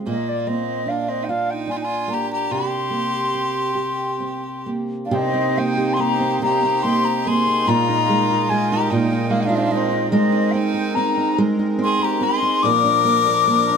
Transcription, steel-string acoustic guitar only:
Already playing: G#3 C4
0.06 A#2 F4
0.47 A#3
0.86 D4
1.29 F4
1.67 D4
2.08 A#3
2.51 C3 G4
2.90 A#3
3.34 C4
3.75 G4
4.20 C4
4.66 A#3
5.11 C3 G4
5.34 C4
5.57 A#3
5.77 G4
5.99 A#3
6.20 C4
6.42 C3 G4
6.63 C4
6.84 A#3
7.27 A#3
7.47 C4
7.67 A#2 F4
7.89 D#4
8.09 G#3
8.31 F4
8.51 G#3
8.72 D#4
8.92 A#2 F4
9.11 D#4
9.30 G#3
9.49 F4
9.71 G#3
9.91 D#4
10.12 G#3 A#4
10.32 D#4
10.54 C4
10.74 A#4
10.96 C4
11.17 D#4
11.38 G#3 A#4
11.59 D#4
11.79 C4
11.99 A#4
12.21 C4
12.42 D#4
12.63 A#2 A#4
12.84 D4
13.05 A#3
13.27 A#4
13.47 A#3
13.70 D4

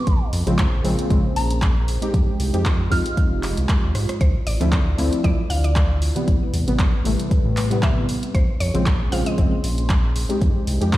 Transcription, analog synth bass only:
0.07 A#1
0.33 F2
0.47 A#1
0.85 A#1
1.10 G#1
1.36 A#1
2.14 F2
2.40 C2
2.54 F2
2.91 F2
3.32 F1
3.57 C2
3.83 D#2
3.95 G#2
4.21 D2
4.47 A1
4.61 D2
4.98 D2
5.24 C2
5.50 D2
6.28 A1
6.53 E2
6.68 A1
7.05 A1
7.45 A2
8.35 A#1
8.60 F2
8.75 A#1
9.12 A#1
9.38 G#1
9.64 A#1
10.41 F2
10.67 C2
10.81 F2

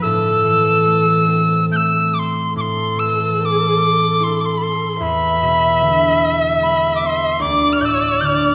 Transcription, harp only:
Already playing: B3
0.04 A2
0.44 E3
0.85 A3
1.27 C4
1.71 A3
2.56 A2
2.96 E3
3.39 C4
4.20 E4
4.60 A4
5.00 E2
5.42 B2
5.81 D3
6.61 G#3
7.01 B3
7.40 D2
7.81 A2
8.21 D3

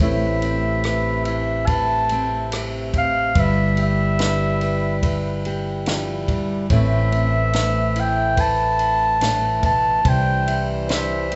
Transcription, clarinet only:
0.01 E5
1.25 E5
1.66 A5
2.98 F5
3.39 E5
3.82 E5
6.76 E5
8.00 G5
8.40 A5
9.65 A5
10.08 G5
10.93 E5

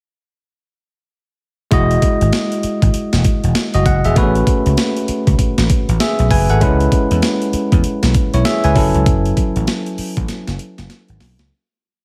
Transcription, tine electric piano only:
1.71 G#3 E4 F#4 D#5
3.75 F#4 D#5
3.86 F#5
4.05 G#4 E5
4.16 A3 B3 F#4 B4
4.23 C#4
6.00 G#4 E5
6.31 B4 G#5
6.50 A4 F#5
6.60 G#3 C#4 E4 B4
8.34 E4 C#5
8.45 G#4 E5
8.64 B4 G#5
8.75 F#3 C#4 E4 A4

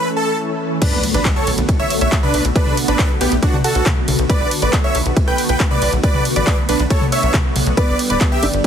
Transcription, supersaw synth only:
0.17 A4
0.82 D4 B4
1.14 D4 B4
1.36 A4 C#5
1.79 C#5 E5
2.01 C#5 E5
2.23 D4 B4
2.56 D4 B4
2.88 D4 B4
3.21 B3 G4
3.43 D4 F#4
3.64 F#4 A4
4.30 B4 D5
4.62 B4 D5
4.84 C#5 E5
5.28 B4 G5
5.49 B4 G5
5.71 B4 D5
6.04 B4 D5
6.36 B4 D5
6.69 D4 B4
6.91 A4 C#5
7.12 C#5 E5
7.77 B4 D5
8.10 B4 D5
8.32 G4 E5

